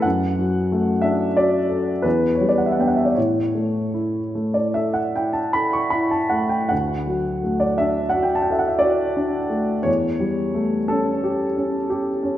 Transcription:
0.02 F#2 F#5
0.39 F#3
0.72 A3
1.02 D4 E5
1.37 F#4 D5
1.69 A4
2.02 E2 B4
2.35 C#5
2.41 G3
2.49 D5
2.58 F#5
2.66 E5
2.72 F#5
2.79 B3 D4 G5
2.87 F#5
2.96 E5
3.05 D5
3.15 A2 C#5
3.55 A3
3.94 E4
4.35 A3
4.54 D5
4.74 A4 E5
4.94 F#5
5.16 E4 G5
5.33 A5
5.53 A4 B5
5.73 C#6
5.90 E4 B5
6.11 A5
6.30 A3 F#5
6.49 G5
6.69 D2 F#5
7.07 F#3
7.44 A3
7.60 D5
7.78 D4 E5
8.09 F#5
8.15 F#4
8.23 G5
8.35 A5
8.42 G5
8.50 A4 E5
8.59 F#5
8.68 E5
8.79 F#4 D5
9.17 D4
9.50 A3
9.83 E2 C#5
10.20 G3
10.54 A3
10.88 C#4 A4
11.24 G4
11.57 C#4
11.90 G4
12.23 C#4

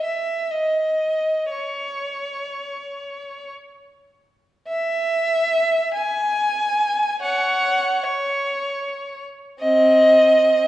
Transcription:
0.04 E5
0.51 D#5
1.51 C#5
4.68 E5
5.94 G#5
7.22 C#5 F#5
8.03 C#5
9.60 C4 D#5

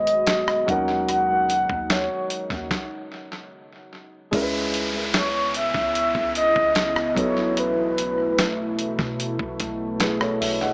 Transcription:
Already playing: G#1 B2 F#3 G#3 B3 D#4 F#4 G#4 D#5
0.07 closed hi-hat
0.27 snare, closed hi-hat
0.48 cross-stick
0.66 D#2 C#3 F#3 C#4 D#4 F#5, kick, closed hi-hat
0.70 A#4
1.09 F#5, closed hi-hat
1.50 closed hi-hat
1.70 D#2, kick
1.90 C#5, snare, closed hi-hat
2.30 closed hi-hat
2.50 D#2, kick
2.71 kick, snare
4.31 C#2 C#3 G#3 B3 C#4 E4, kick, closed hi-hat, downlifter
4.35 A#4
4.42 B4
4.74 closed hi-hat
5.14 C#5, snare, closed hi-hat
5.54 E5, closed hi-hat
5.74 C#2, kick
5.95 closed hi-hat
6.15 C#2, kick
6.35 D#5, closed hi-hat
6.56 C#2, kick
6.75 snare, closed hi-hat
6.96 cross-stick
7.15 B1 B2 F#3 A3 B3 D#4 C#5, kick, closed hi-hat
7.19 A4
7.24 E4
7.57 B4, closed hi-hat
7.98 closed hi-hat
8.38 snare, closed hi-hat
8.79 closed hi-hat
8.99 B2, kick
9.20 closed hi-hat
9.39 B1, kick
9.60 B1, kick, closed hi-hat
10.00 G#4 B4, snare, closed hi-hat
10.21 A4 C#5, cross-stick
10.41 B1 C#5 E5, open hi-hat
10.61 D#5 F#5

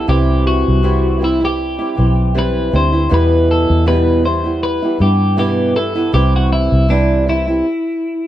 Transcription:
0.08 C2 C3 E3 G3 C4 E4 G4
0.47 F#4
0.68 C2
0.83 C3 E3 G3 C4 E4
1.19 E3 G3 C4 E4
1.24 E4
1.41 G3 C4 E4
1.45 G4
1.79 G3 C4 E4
1.95 B1 E3 G3 C4 E4
2.34 E3 G3 C4 E4
2.39 B4
2.71 D2 E3 G3 C4 E4
2.76 C5
2.92 G3 C4 E4
3.09 E2 B2 E3 G3 B3 E4
3.14 B4
3.51 A4
3.70 E2
3.85 E2 B2 E3 G3 B3 E4 B4
4.23 E3 G3 B3 E4 C5
4.44 E3 G3 B3 E4
4.63 B4
4.82 E3 G3 B3 E4
4.99 G2 E3 G3 B3 E4 G4
5.37 E2 B2 E3 G3 B3 E4 G4
5.74 E3 G3 B3 E4 A4
5.95 E3 G3 B3 E4
6.12 C2 C3 E3 G3 C4 E4 G4
6.36 F#4
6.53 E4
6.72 C2
6.89 C3 E3 G3 C4 D4 E4
7.26 E3 G3 C4 E4
7.47 G3 C4 E4

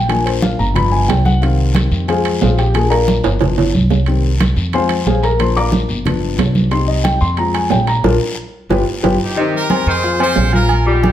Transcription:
Already playing: A#1
0.08 F3 A#3 D4 G#5, high conga, high timbale, long guiro
0.26 C5, high conga, high timbale
0.42 F5, high conga, low timbale, short guiro
0.59 G1 A#5, high conga, short guiro
0.74 F3 B3 D4 B5, high conga, low conga, high timbale, long guiro
0.92 G#5, high conga
1.08 C2 G5, high conga, high timbale, low timbale, short guiro
1.25 F#5, high conga, short guiro
1.42 D#3 G3 C4 F5, high conga, high timbale, long guiro
1.59 high conga
1.74 high conga, high timbale, low timbale, short guiro
1.91 F2, high conga, short guiro
2.08 F3 G#3 C4 G#4 C5 F5 G#5, high conga, high timbale, long guiro
2.25 high conga, high timbale
2.41 A#1 F4 G#4 C5 F5, high conga, low timbale, short guiro
2.58 G4 G5, high timbale, short guiro
2.74 F3 A#3 D4 G#4 G#5, high conga, high timbale, long guiro
2.90 A#4 D5 F5 A#5, high conga, high timbale
3.08 high conga, low timbale, short guiro
3.24 G1, high timbale, short guiro
3.39 F3 B3 D4, high conga, low conga, high timbale, long guiro
3.58 high conga, low conga, high timbale
3.73 C2, high conga, short guiro
3.90 high conga, low timbale, short guiro
4.06 D#3 G3 C4, high conga, high timbale, long guiro
4.24 high conga
4.40 high conga, high timbale, low timbale, short guiro
4.56 F2, high conga, short guiro
4.73 F3 G#3 C4 C5 F5 G#5 C6, high conga, high timbale, long guiro
4.89 high conga, high timbale
5.06 A#1 G#4 C5 F5 G#5, high conga, low timbale, short guiro
5.23 A#4 A#5, high timbale, short guiro
5.39 F3 A#3 D4 C5 C6, high conga, high timbale, long guiro
5.56 D5 F5 A#5 D6, high conga, high timbale
5.72 high conga, low timbale, short guiro
5.89 G1, high conga, short guiro
6.05 F3 B3 D4, high conga, low conga, high timbale, long guiro
6.22 high conga
6.37 C2, high conga, high timbale, low timbale, short guiro
6.55 high conga, short guiro
6.71 G3 C4 D#4 C6, high timbale, long guiro
6.88 D#5, high conga
7.04 G5, high conga, high timbale, low timbale, short guiro
7.21 F2 C6, high conga, short guiro
7.37 G#3 C4 F4 A#5, high conga, high timbale, long guiro
7.54 G#5, high conga, high timbale
7.70 A#1 G5, high conga, low timbale, short guiro
7.87 A#5, high timbale, short guiro
8.04 A#1 D4 F4 A#4, high conga, high timbale, long guiro
8.69 G1 F4 G4 B4, high conga, high timbale, long guiro
9.03 G1 F4 G4 B4, high conga, high timbale, long guiro
9.23 D#4 G4
9.36 C3 D#3 D#4 D#5, high conga
9.54 G4 A#4, high conga
9.70 C4 C5 C6, high conga, low timbale, low agogo
9.86 F2 D#3 G#4 C5, high conga
10.03 F4 F5 F6, high conga, low agogo
10.19 F3 C4 G#4 C5 C6, high conga, low agogo
10.36 A#1, high conga, low timbale
10.52 F4 A#4 F5 F6, high conga, low agogo
10.69 high conga, low agogo
10.85 G3 D#4 F4 G4 D5 D6, high conga
11.03 high conga, low timbale, low agogo

